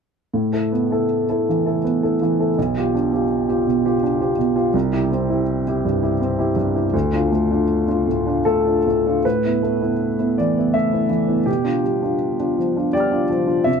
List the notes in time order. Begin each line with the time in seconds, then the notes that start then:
0.34 A2
0.53 E4 A4
0.72 B3
0.91 E4 A4
1.29 E4 A4
1.49 E3
1.66 E4 A4
1.84 B3
2.03 E4 A4
2.22 E3
2.40 E4 A4
2.58 B1
2.77 F4 G4
2.95 D4
3.13 F4 G4
3.49 F4 G4
3.67 B2
3.85 F4 G4
4.03 D4
4.20 F4 G4
4.38 B2
4.56 F4 G4
4.74 C2
4.93 E4 G4
5.11 C4
5.30 E4 G4
5.68 E4 G4
5.85 G2
6.02 E4 G4
6.21 C4
6.39 E4 G4
6.56 G2
6.75 E4 G4
6.93 D2
7.13 D4 F4
7.32 A3
7.51 D4 F4
7.88 D4 F4
8.08 A2
8.26 D4 F4
8.45 A3 A4
8.67 D4 F4
8.87 A2
9.06 D4 F4
9.25 A2 B4
9.45 B3 E4
9.63 A3
9.81 B3 E4
10.19 B3 E4
10.38 E3 D5
10.57 B3 E4
10.74 A3 E5
10.93 B3 E4
11.09 E3
11.28 B3 E4
11.46 B2 G4
11.64 D4 F4
11.83 G3
12.02 D4 F4
12.40 D4 F4
12.58 F3
12.76 D4 F4
12.93 G3 D5 G5
12.97 D6 F6
13.11 D4 F4
13.30 F3
13.47 D4 F4
13.64 C3 E5